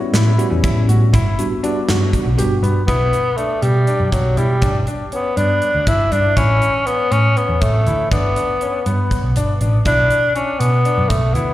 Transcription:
Already playing: G3 B3 C#4 E4
0.13 A2 E4, snare, closed hi-hat
0.38 G3 B3 C#4 F#4, closed hi-hat
0.50 E2 G3 B3 C#4 E4
0.64 A1 E4, kick, closed hi-hat
0.88 A2 F#4, closed hi-hat
1.13 G1 E4, kick, closed hi-hat
1.39 G3 B3 D4 F#4, closed hi-hat
1.63 G3 B3 D4 F#4, closed hi-hat
1.89 G2 F#4, snare, closed hi-hat
2.13 kick, closed hi-hat
2.26 B1
2.38 G1 G3 B3 D4 F#4 G4, closed hi-hat
2.63 G2 B3, closed hi-hat
2.87 B1 B3 E4, kick, closed hi-hat
3.13 closed hi-hat
3.37 A3 D4, closed hi-hat
3.62 B2 G3, closed hi-hat
3.87 D4, closed hi-hat
4.00 F#2
4.12 B1 F#3, kick, closed hi-hat
4.37 B2 G3 E4, closed hi-hat
4.62 G1 D4, kick, closed hi-hat
4.87 D4, closed hi-hat
5.12 B3 C#4, closed hi-hat
5.37 G2 B3 D4, closed hi-hat
5.62 closed hi-hat
5.75 D2
5.87 G1 D4 E4, kick, closed hi-hat
6.12 G2 D4, closed hi-hat
6.36 A1 C#4 E4, kick, closed hi-hat
6.62 closed hi-hat
6.87 B3 C#4, closed hi-hat
7.11 A2 C#4, closed hi-hat
7.37 B3 C#4, closed hi-hat
7.49 E2
7.61 A1 A3, kick, closed hi-hat
7.87 D2 E4, closed hi-hat
8.11 G1 B3 D4, kick, closed hi-hat
8.36 D4, closed hi-hat
8.61 C#4, closed hi-hat
8.86 G2 B3, closed hi-hat
9.11 kick, closed hi-hat
9.23 B1
9.36 G1 D4, closed hi-hat
9.61 A1 D4, closed hi-hat
9.85 B1 D4 E4, kick, closed hi-hat
10.10 closed hi-hat
10.35 C#4 D4, closed hi-hat
10.59 B2 B3, closed hi-hat
10.85 D4, closed hi-hat
10.98 F#2
11.09 B1 A3, kick, closed hi-hat
11.34 D2 B3 E4, closed hi-hat

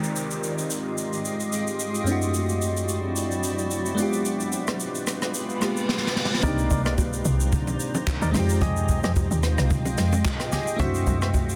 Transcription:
Already playing: G#3 C4 D#4 F4 G4 D#5, downlifter
0.04 shaker
0.16 shaker
0.31 shaker
0.44 shaker
0.58 shaker
0.70 shaker
0.98 shaker
1.13 shaker
1.25 shaker
1.40 shaker
1.53 shaker
1.67 shaker
1.80 shaker
1.95 shaker
2.04 F#2 F#3 A3 C4 E4 F#4 D5, shaker
2.09 D4 E4 F#4
2.22 shaker
2.34 shaker
2.49 shaker
2.62 shaker
2.77 shaker
2.89 shaker
3.16 shaker
3.31 shaker
3.44 shaker
3.59 shaker
3.71 shaker
3.86 shaker
3.95 G#3 B3 D4 F4 G4 B4, shaker
4.00 F4 G4
4.13 shaker
4.25 shaker
4.40 shaker
4.53 shaker
4.67 cross-stick, shaker
4.80 shaker
4.95 shaker
5.07 cross-stick, shaker
5.22 cross-stick, shaker
5.34 reverse cymbal, shaker
5.49 shaker
5.60 G#3 A#3 D4 F4 G4, cross-stick, shaker
5.68 B3
5.77 shaker
5.89 snare
5.98 snare
6.07 snare
6.16 snare
6.25 snare
6.34 snare
6.40 C2 D#3 A#3 C4 D4 D#4 A#4 C5 D5 A#5, kick, low conga, shaker
6.46 D#4 G4
6.58 shaker
6.71 C2, kick, shaker
6.85 D#4 A#4 D5, cross-stick, shaker
6.98 kick, high bongo, shaker
7.13 shaker
7.25 C2, shaker
7.40 shaker
7.53 kick, low conga, shaker
7.67 low bongo, shaker
7.80 shaker
7.95 low bongo, shaker
8.07 kick, clap, high bongo, shaker
8.22 D#2 D#4 A#4 D5, shaker
8.31 F2 G#3 C4 D#4 F4 D#5 G5, cross-stick, open hi-hat, high bongo, low conga, shaker
8.37 F4 G4
8.49 shaker
8.61 F2 G4 G#4 D#5, kick, hi-hat pedal, low conga, shaker
8.76 shaker
8.89 kick, shaker
9.04 F2 G4 G#4 D#5, cross-stick, shaker
9.16 kick, high bongo, shaker
9.31 D#2, shaker
9.43 cross-stick, shaker
9.58 C2, cross-stick, shaker
9.71 kick, low conga, shaker
9.86 low bongo, shaker
9.98 F2, snare, shaker
10.13 low bongo, shaker
10.25 kick, clap, high bongo, shaker
10.40 cross-stick, shaker
10.52 G4 G#4 D#5, snare, open hi-hat, high bongo, low conga, shaker
10.67 shaker
10.76 F#2 A3 C4 D4 E4 F#4 C5 D5 E5 F#5, kick, hi-hat pedal, low conga, shaker
10.82 E4 F#4
10.95 shaker
11.07 F#2, kick, shaker
11.22 F#4 C5 E5, cross-stick, shaker
11.34 kick, high bongo, shaker
11.49 shaker

